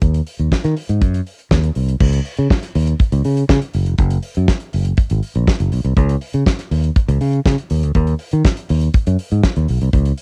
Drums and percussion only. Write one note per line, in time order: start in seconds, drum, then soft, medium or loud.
0.02 kick loud
0.02 closed hi-hat medium
0.14 closed hi-hat medium
0.27 open hi-hat medium
0.39 closed hi-hat soft
0.52 kick loud
0.52 snare loud
0.64 snare soft
0.64 closed hi-hat soft
0.77 open hi-hat medium
0.89 closed hi-hat medium
1.02 kick loud
1.02 closed hi-hat medium
1.14 closed hi-hat soft
1.26 open hi-hat medium
1.39 closed hi-hat soft
1.51 kick loud
1.51 snare loud
1.63 closed hi-hat soft
1.75 open hi-hat medium
1.88 closed hi-hat soft
2.00 kick loud
2.00 crash loud
2.13 closed hi-hat medium
2.25 open hi-hat medium
2.37 closed hi-hat soft
2.50 kick loud
2.50 snare loud
2.62 snare soft
2.62 closed hi-hat medium
2.75 open hi-hat medium
2.87 closed hi-hat medium
3.00 kick loud
3.00 closed hi-hat medium
3.12 closed hi-hat medium
3.25 open hi-hat medium
3.37 closed hi-hat soft
3.49 kick loud
3.49 snare loud
3.62 closed hi-hat soft
3.74 open hi-hat medium
3.86 closed hi-hat soft
3.98 kick loud
3.98 closed hi-hat medium
4.10 closed hi-hat medium
4.22 open hi-hat medium
4.35 closed hi-hat soft
4.48 kick loud
4.48 snare loud
4.60 closed hi-hat soft
4.73 open hi-hat medium
4.85 closed hi-hat medium
4.97 kick loud
4.97 closed hi-hat medium
5.10 closed hi-hat medium
5.23 open hi-hat medium
5.35 closed hi-hat soft
5.47 kick loud
5.47 snare loud
5.60 closed hi-hat soft
5.72 open hi-hat medium
5.85 closed hi-hat soft
5.97 kick loud
5.97 closed hi-hat medium
6.09 closed hi-hat medium
6.21 open hi-hat medium
6.33 closed hi-hat medium
6.46 kick loud
6.46 snare loud
6.59 snare soft
6.59 closed hi-hat soft
6.71 open hi-hat medium
6.84 closed hi-hat medium
6.96 kick loud
6.96 closed hi-hat medium
7.09 closed hi-hat medium
7.21 open hi-hat medium
7.33 closed hi-hat soft
7.46 kick loud
7.46 snare loud
7.58 closed hi-hat soft
7.70 open hi-hat medium
7.83 closed hi-hat medium
7.95 kick loud
7.95 closed hi-hat medium
8.07 closed hi-hat medium
8.19 open hi-hat medium
8.31 closed hi-hat soft
8.45 kick loud
8.45 snare loud
8.57 closed hi-hat medium
8.69 open hi-hat medium
8.81 closed hi-hat medium
8.94 kick loud
8.94 closed hi-hat medium
9.07 closed hi-hat medium
9.19 open hi-hat medium
9.31 closed hi-hat soft
9.44 kick loud
9.44 snare loud
9.56 closed hi-hat soft
9.68 open hi-hat medium
9.81 closed hi-hat soft
9.93 kick loud
9.93 closed hi-hat medium
10.05 closed hi-hat medium
10.18 open hi-hat medium